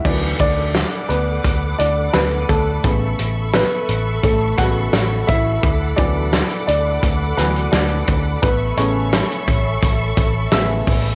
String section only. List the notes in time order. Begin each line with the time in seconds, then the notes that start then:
0.05 A4 F#5 B5 D6
2.83 E5 C#6
5.64 F#5 D6
8.43 A4 E5 C#6